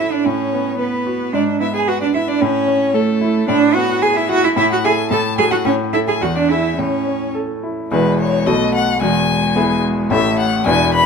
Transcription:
0.00 0.22 A2 soft
0.00 0.27 C#4 soft
0.00 0.13 E4 medium
0.00 0.25 E4 soft
0.00 0.14 A4 soft
0.00 0.14 E5 soft
0.12 0.26 D4 medium
0.12 0.28 D5 soft
0.24 1.31 A2 soft
0.24 0.79 C#4 medium
0.24 0.79 C#5 medium
0.53 0.96 B3 soft
0.79 1.34 B3 medium
0.79 1.23 B4 soft
0.79 1.33 B4 medium
1.06 1.33 F#4 soft
1.33 2.38 G#2 soft
1.33 1.59 D4 medium
1.33 1.43 D5 medium
1.60 2.04 B3 soft
1.60 1.66 E4 medium
1.60 1.74 E5 medium
1.75 1.90 G#4 medium
1.75 1.80 G#5 medium
1.88 2.01 F#4 medium
1.88 2.31 B4 soft
1.88 2.01 F#5 medium
2.02 2.07 D4 medium
2.02 2.14 D5 soft
2.14 2.19 E4 medium
2.14 2.41 E4 soft
2.14 2.30 E5 medium
2.28 2.42 D4 medium
2.28 2.43 D5 medium
2.40 3.45 A2 medium
2.40 2.95 C#4 medium
2.40 2.96 C#5 medium
2.68 3.10 C#4 soft
2.94 3.48 A3 medium
2.94 3.37 A4 medium
2.94 3.47 A4 medium
3.21 3.48 E4 soft
3.48 4.54 A2 medium
3.48 3.76 D4 medium
3.48 3.56 D5 medium
3.74 4.19 B3 medium
3.74 4.04 F#4 medium
3.74 4.04 F#5 medium
4.02 4.18 G#4 medium
4.02 4.46 G#4 medium
4.02 4.15 G#5 medium
4.16 4.29 E4 medium
4.16 4.31 E5 medium
4.29 4.57 E4 medium
4.29 4.46 F#4 loud
4.29 4.43 F#5 medium
4.43 4.56 E4 medium
4.43 4.49 E5 medium
4.56 5.09 A2 medium
4.56 4.70 E4 medium
4.56 4.62 E5 medium
4.71 4.78 F#4 medium
4.71 4.86 F#5 medium
4.84 5.09 E4 medium
4.84 4.93 G#4 medium
4.84 5.09 A4 medium
4.84 5.11 G#5 medium
5.11 5.64 A2 medium
5.11 5.20 A4 medium
5.11 5.37 A5 medium
5.38 5.63 F#4 soft
5.38 5.44 G#4 medium
5.38 5.63 A4 soft
5.38 5.52 G#5 medium
5.51 5.57 F#4 medium
5.51 5.65 F#5 medium
5.65 6.20 A2 medium
5.65 5.73 C#4 medium
5.65 5.74 C#5 medium
5.93 6.19 E4 soft
5.93 5.99 E4 medium
5.93 6.19 A4 soft
5.93 6.00 E5 medium
6.08 6.14 G#4 medium
6.08 6.24 G#5 medium
6.21 6.76 E2 medium
6.21 6.27 F#4 medium
6.21 6.37 F#5 medium
6.36 6.50 D4 medium
6.36 6.52 D5 medium
6.49 6.77 E4 medium
6.49 6.75 E4 soft
6.49 6.76 G#4 soft
6.49 6.80 E5 medium
6.78 7.88 A2 soft
6.78 7.34 C#4 medium
6.78 7.35 C#5 medium
7.07 7.52 C#4 soft
7.35 7.80 A4 soft
7.63 7.91 E4 soft
7.91 8.45 E1 medium
7.91 8.45 E2 medium
7.91 8.48 G#3 soft
7.91 8.42 B3 soft
7.91 8.43 E4 soft
7.91 8.43 G#4 soft
7.91 8.17 B4 medium
8.20 8.48 C#5 medium
8.46 9.00 B1 medium
8.46 9.00 B2 medium
8.46 9.00 A3 soft
8.46 8.97 B3 soft
8.46 8.98 F#4 soft
8.46 8.98 A4 soft
8.46 8.74 D#5 medium
8.74 9.01 F#5 medium
9.00 10.08 E1 medium
9.00 10.08 E2 medium
9.00 10.12 G#3 medium
9.00 9.82 G#5 medium
9.55 10.07 B3 soft
9.55 10.07 E4 soft
9.55 10.07 G#4 medium
10.10 10.64 A1 medium
10.10 10.64 A2 medium
10.10 10.67 A3 medium
10.10 10.62 C#4 soft
10.10 10.62 E4 soft
10.10 10.63 A4 soft
10.10 10.37 E5 medium
10.39 10.66 F#5 medium
10.65 11.06 E1 medium
10.65 11.06 E2 medium
10.65 11.06 E3 medium
10.65 11.06 D4 medium
10.65 11.06 E4 medium
10.65 11.06 B4 medium
10.65 10.93 G#5 medium
10.94 11.06 B5 loud

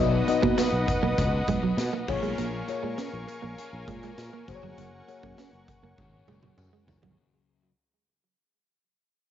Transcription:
0.00 0.21 B1 loud
0.00 1.16 B2 medium
0.00 1.18 F#3 medium
0.00 0.24 B3 medium
0.00 1.19 B3 medium
0.00 0.24 D#4 medium
0.00 0.24 F#4 medium
0.00 2.06 B4 medium
0.00 0.13 C#5 medium
0.00 0.24 D#5 loud
0.00 2.06 D#5 medium
0.00 0.12 E5 medium
0.00 2.06 F#5 medium
0.00 2.06 D#6 medium
0.28 1.30 B3 medium
0.28 1.31 D#4 medium
0.28 1.31 F#4 medium
0.28 1.31 D#5 loud
0.28 muted clean electric guitar stroke soft
0.28 closed hi-hat medium
0.28 tambourine soft
0.43 0.54 B2 loud
0.43 0.53 A#3 medium
0.43 kick loud
0.58 0.68 B3 medium
0.58 snare loud
0.58 closed hi-hat medium
0.58 tambourine medium
0.72 0.84 B1 medium
0.88 muted clean electric guitar stroke soft
0.88 kick medium
0.88 closed hi-hat medium
0.88 tambourine soft
1.03 1.14 B1 medium
1.03 1.13 A#3 medium
1.18 1.41 C#2 medium
1.18 1.48 B2 medium
1.18 1.48 F#3 medium
1.18 1.46 B3 medium
1.18 muted clean electric guitar stroke soft
1.18 kick medium
1.18 closed hi-hat medium
1.18 tambourine soft
1.47 1.70 B1 medium
1.47 2.08 F#3 medium
1.47 1.59 G#3 medium
1.47 2.06 B3 medium
1.47 kick medium
1.47 closed hi-hat medium
1.63 1.73 F#3 medium
1.77 1.89 B2 loud
1.77 snare loud
1.77 closed hi-hat medium
1.77 tambourine medium
1.93 2.03 A#3 medium
2.06 2.19 A#1 loud
2.06 3.56 A#2 medium
2.06 3.58 F3 medium
2.06 3.59 A#3 medium
2.06 2.59 A#3 medium
2.06 2.59 F4 medium
2.06 2.60 G#4 medium
2.06 7.14 A#4 medium
2.06 2.60 C#5 loud
2.06 4.46 F5 medium
2.06 7.14 G#5 medium
2.06 4.46 C#6 medium
2.06 muted clean electric guitar stroke soft
2.06 kick loud
2.06 tambourine medium
2.06 crash medium
2.23 2.35 B1 medium
2.23 2.33 G#3 medium
2.23 closed hi-hat soft
2.38 2.61 A#1 loud
2.38 2.48 A#3 medium
2.38 closed hi-hat medium
2.38 tambourine medium
2.68 3.70 A#3 medium
2.68 3.70 F4 medium
2.68 3.71 G#4 medium
2.68 3.71 C#5 medium
2.68 muted clean electric guitar stroke soft
2.68 closed hi-hat medium
2.68 tambourine soft
2.83 2.95 A#2 medium
2.83 2.93 G#3 medium
2.98 3.08 C#4 medium
2.98 snare loud
2.98 closed hi-hat loud
2.98 tambourine medium
3.13 3.25 A#1 medium
3.28 muted clean electric guitar stroke soft
3.28 closed hi-hat medium
3.28 tambourine medium
3.42 3.55 A#1 medium
3.42 3.53 A#3 medium
3.58 3.88 A#2 medium
3.58 3.89 F3 medium
3.58 3.86 A#3 medium
3.58 muted clean electric guitar stroke soft
3.58 closed hi-hat medium
3.58 tambourine soft
3.73 3.84 A#1 medium
3.88 4.10 A#2 loud
3.88 4.46 F3 soft
3.88 3.98 G#3 medium
3.88 7.38 A#3 medium
3.88 kick medium
3.88 closed hi-hat medium
4.03 4.14 G#3 medium
4.03 closed hi-hat medium
4.18 4.29 A#2 loud
4.18 snare loud
4.18 closed hi-hat medium
4.18 tambourine medium
4.33 4.43 A#3 medium
4.47 4.59 F#1 loud
4.47 5.97 F#2 medium
4.47 5.98 C#3 medium
4.47 6.00 F#3 medium
4.47 4.99 A#3 medium
4.47 4.99 F#4 medium
4.47 4.99 G#4 medium
4.47 4.55 C5 medium
4.47 7.15 F#5 medium
4.47 7.15 C#6 medium
4.47 muted clean electric guitar stroke soft
4.47 kick loud
4.47 closed hi-hat medium
4.47 tambourine medium
4.55 5.03 C#5 loud
4.63 4.74 G1 medium
4.63 4.74 F#3 medium
4.78 5.00 F#1 loud
4.78 4.88 F#3 medium
4.78 closed hi-hat medium
4.78 tambourine medium
5.07 6.10 A#3 medium
5.07 6.10 F#4 medium
5.07 6.10 G#4 medium
5.07 6.11 C#5 medium
5.07 muted clean electric guitar stroke soft
5.07 closed hi-hat medium
5.07 tambourine soft
5.23 5.34 F#2 loud
5.23 5.34 A#3 medium
5.23 kick medium
5.38 5.48 C#4 medium
5.38 snare loud
5.38 closed hi-hat medium
5.38 tambourine medium
5.53 5.64 F#1 medium
5.68 muted clean electric guitar stroke soft
5.68 kick medium
5.68 closed hi-hat medium
5.68 tambourine medium
5.83 5.94 F#1 medium
5.83 5.93 A#3 medium
5.98 6.21 G#1 medium
5.98 6.28 F#2 medium
5.98 6.28 C#3 medium
5.98 6.26 F#3 medium
5.98 muted clean electric guitar stroke soft
5.98 kick medium
5.98 high tom medium
5.98 tambourine soft
6.27 6.50 F#1 medium
6.27 7.69 C#3 soft
6.27 7.69 F#3 medium
6.27 6.38 G#3 medium
6.27 mid tom medium
6.27 tambourine soft
6.43 6.54 F#3 medium
6.43 mid tom medium
6.58 6.69 F#2 loud
6.58 mid tom medium
6.58 tambourine medium
6.73 6.83 G#3 medium
6.87 6.99 F#1 loud
6.87 muted clean electric guitar stroke soft
6.87 floor tom loud
6.87 tambourine medium
7.02 7.14 G1 medium
7.02 7.13 F#3 medium
7.02 floor tom medium

